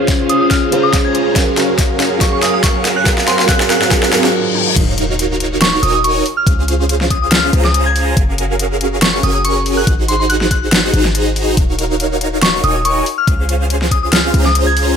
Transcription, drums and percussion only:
0.08 kick medium
0.08 snare medium
0.08 closed hi-hat medium
0.29 closed hi-hat medium
0.51 kick medium
0.51 snare medium
0.51 closed hi-hat medium
0.72 closed hi-hat medium
0.93 kick loud
0.93 snare medium
0.93 closed hi-hat medium
1.15 closed hi-hat medium
1.36 kick loud
1.36 snare medium
1.36 closed hi-hat medium
1.57 snare medium
1.57 closed hi-hat medium
1.78 kick loud
1.78 snare medium
1.78 closed hi-hat medium
2.00 snare medium
2.00 closed hi-hat medium
2.21 kick loud
2.21 snare medium
2.21 closed hi-hat medium
2.42 snare medium
2.42 closed hi-hat medium
2.64 kick loud
2.64 snare medium
2.64 closed hi-hat medium
2.85 snare medium
2.85 closed hi-hat medium
3.06 kick loud
3.06 snare medium
3.06 closed hi-hat medium
3.18 snare medium
3.28 snare medium
3.28 closed hi-hat medium
3.39 snare medium
3.49 kick loud
3.49 snare medium
3.49 closed hi-hat medium
3.60 snare medium
3.70 snare loud
3.70 closed hi-hat medium
3.82 snare medium
3.91 kick loud
3.91 snare loud
3.91 closed hi-hat medium
4.03 snare medium
4.12 snare loud
4.12 closed hi-hat medium
4.24 snare medium
4.55 high tom medium
4.67 mid tom medium
4.76 kick loud
4.76 closed hi-hat medium
4.76 crash loud
4.98 closed hi-hat medium
5.19 closed hi-hat medium
5.40 closed hi-hat medium
5.62 snare loud
5.62 closed hi-hat medium
5.83 closed hi-hat medium
6.04 closed hi-hat medium
6.26 open hi-hat medium
6.47 kick loud
6.47 closed hi-hat medium
6.68 closed hi-hat medium
6.89 closed hi-hat medium
7.01 snare soft
7.10 kick medium
7.10 closed hi-hat medium
7.32 snare loud
7.32 closed hi-hat medium
7.53 closed hi-hat medium
7.65 snare soft
7.74 closed hi-hat medium
7.96 open hi-hat medium
8.17 kick loud
8.17 closed hi-hat medium
8.38 closed hi-hat medium
8.59 closed hi-hat medium
8.81 closed hi-hat medium
9.02 snare loud
9.02 closed hi-hat medium
9.23 closed hi-hat medium
9.45 closed hi-hat medium
9.66 open hi-hat medium
9.87 kick loud
9.87 closed hi-hat medium
10.08 closed hi-hat medium
10.30 closed hi-hat medium
10.41 snare soft
10.51 kick medium
10.51 closed hi-hat medium
10.72 snare loud
10.72 closed hi-hat medium
10.94 closed hi-hat medium
11.05 snare soft
11.15 closed hi-hat medium
11.36 open hi-hat medium
11.57 kick loud
11.57 closed hi-hat medium
11.79 closed hi-hat medium
12.00 closed hi-hat medium
12.21 closed hi-hat medium
12.42 snare loud
12.42 closed hi-hat medium
12.64 closed hi-hat medium
12.85 closed hi-hat medium
13.06 open hi-hat medium
13.27 kick loud
13.27 closed hi-hat medium
13.49 closed hi-hat medium
13.70 closed hi-hat medium
13.82 snare soft
13.91 kick medium
13.91 closed hi-hat medium
14.13 snare loud
14.13 closed hi-hat medium
14.34 closed hi-hat medium
14.45 snare soft
14.55 closed hi-hat medium
14.77 open hi-hat medium

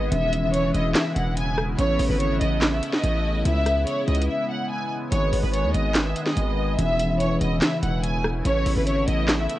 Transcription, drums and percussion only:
0.12 closed hi-hat medium
0.33 closed hi-hat medium
0.54 closed hi-hat medium
0.74 closed hi-hat medium
0.95 snare loud
0.95 clap loud
0.95 closed hi-hat medium
1.16 closed hi-hat medium
1.37 closed hi-hat medium
1.58 cross-stick loud
1.79 closed hi-hat medium
1.99 open hi-hat medium
2.20 closed hi-hat medium
2.41 closed hi-hat medium
2.62 snare loud
2.62 clap medium
2.62 closed hi-hat medium
2.83 closed hi-hat medium
2.93 snare medium
3.04 closed hi-hat medium
3.45 closed hi-hat medium
3.66 cross-stick medium
3.66 closed hi-hat medium
3.87 closed hi-hat medium
4.08 closed hi-hat soft
4.15 closed hi-hat medium
4.22 closed hi-hat medium
5.12 closed hi-hat medium
5.33 open hi-hat medium
5.53 closed hi-hat medium
5.74 closed hi-hat medium
5.95 snare loud
5.95 clap loud
5.95 closed hi-hat medium
6.16 closed hi-hat medium
6.26 snare medium
6.37 closed hi-hat medium
6.79 closed hi-hat medium
6.99 closed hi-hat medium
7.20 closed hi-hat medium
7.41 closed hi-hat medium
7.62 snare loud
7.62 clap loud
7.62 closed hi-hat medium
7.83 closed hi-hat medium
8.04 closed hi-hat medium
8.24 cross-stick loud
8.45 closed hi-hat loud
8.66 open hi-hat medium
8.87 closed hi-hat medium
9.08 closed hi-hat medium
9.28 snare loud
9.28 clap loud
9.28 closed hi-hat medium
9.49 closed hi-hat medium

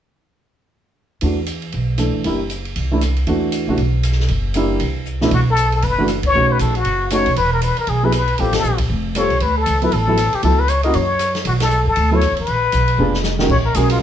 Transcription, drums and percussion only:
1.21 ride medium
1.46 hi-hat pedal soft
1.46 ride soft
1.62 ride soft
1.72 ride soft
1.98 cross-stick medium
1.98 hi-hat pedal soft
1.98 ride soft
2.24 ride soft
2.50 hi-hat pedal soft
2.50 ride soft
2.65 ride soft
2.76 ride medium
3.01 cross-stick soft
3.01 hi-hat pedal soft
3.01 ride soft
3.16 ride soft
3.27 ride soft
3.52 hi-hat pedal soft
3.52 ride medium
3.78 ride soft
4.03 cross-stick soft
4.03 hi-hat pedal soft
4.03 ride medium
4.12 snare soft
4.20 snare soft
4.28 ride soft
4.54 hi-hat pedal soft
4.54 ride medium
4.80 ride medium
5.05 hi-hat pedal soft
5.21 snare soft
5.31 kick medium
5.31 ride medium
5.57 hi-hat pedal soft
5.57 ride medium
5.72 ride soft
5.82 ride medium
6.08 cross-stick medium
6.08 hi-hat pedal soft
6.08 ride medium
6.23 kick medium
6.23 ride medium
6.59 hi-hat pedal medium
6.59 ride soft
6.75 ride soft
6.85 ride medium
7.10 cross-stick soft
7.10 hi-hat pedal medium
7.10 ride medium
7.26 ride soft
7.36 ride medium
7.62 hi-hat pedal soft
7.62 ride medium
7.77 ride soft
7.87 ride medium
8.12 cross-stick medium
8.12 hi-hat pedal soft
8.12 ride medium
8.28 ride soft
8.38 ride medium
8.53 snare medium
8.53 ride medium
8.63 hi-hat pedal soft
8.78 kick soft
8.78 ride medium
9.15 cross-stick medium
9.15 hi-hat pedal soft
9.15 ride medium
9.30 ride soft
9.40 ride medium
9.66 hi-hat pedal soft
9.66 ride medium
9.82 ride soft
9.92 ride medium
10.17 cross-stick medium
10.17 hi-hat pedal soft
10.17 ride medium
10.33 ride soft
10.43 ride medium
10.68 hi-hat pedal soft
10.68 ride medium
10.83 ride soft
10.94 ride medium
11.19 cross-stick soft
11.19 hi-hat pedal medium
11.19 ride medium
11.35 snare soft
11.35 ride soft
11.45 ride medium
11.60 snare medium
11.60 ride medium
11.70 hi-hat pedal soft
11.96 ride medium
12.21 cross-stick soft
12.21 hi-hat pedal soft
12.21 ride medium
12.37 ride soft
12.47 ride medium
12.72 hi-hat pedal soft
12.72 ride medium
12.88 ride soft
13.14 snare soft
13.24 snare medium
13.24 hi-hat pedal soft
13.39 snare medium
13.49 kick medium
13.49 crash medium
13.74 hi-hat pedal medium
13.74 ride medium
13.90 ride medium

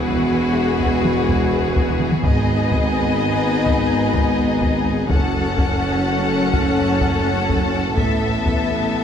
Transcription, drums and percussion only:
0.08 taiko mid medium
0.80 taiko medium
1.05 taiko mid soft
1.29 taiko medium
1.76 taiko medium
1.88 taiko mid soft
2.00 taiko mid soft
2.12 taiko mid soft
2.24 taiko medium
2.71 taiko medium
3.66 taiko medium
4.14 taiko medium
4.62 taiko medium
5.10 taiko medium
5.58 taiko medium
6.53 taiko medium
7.01 taiko medium
7.50 taiko medium
7.98 taiko medium
8.46 taiko medium

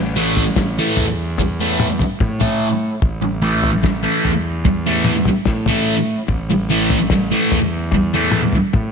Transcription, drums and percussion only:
0.37 floor tom medium
0.56 kick loud
0.56 snare medium
0.97 floor tom medium
1.38 kick loud
1.38 floor tom medium
1.80 mid tom medium
1.99 floor tom medium
2.20 kick loud
2.20 mid tom medium
2.41 floor tom medium
2.41 mid tom medium
3.02 kick medium
3.02 floor tom medium
3.63 floor tom medium
3.84 kick loud
3.84 snare medium
4.25 floor tom medium
4.65 kick loud
4.65 floor tom medium
5.05 mid tom medium
5.25 floor tom medium
5.25 mid tom medium
5.45 kick loud
5.45 snare medium
5.45 mid tom medium
5.66 floor tom medium
5.66 mid tom medium
6.28 kick medium
6.28 floor tom medium
6.90 floor tom medium
7.10 kick loud
7.10 snare medium
7.52 floor tom medium
7.92 kick loud
7.92 floor tom medium
8.32 mid tom medium
8.53 floor tom medium
8.73 kick loud
8.73 mid tom medium

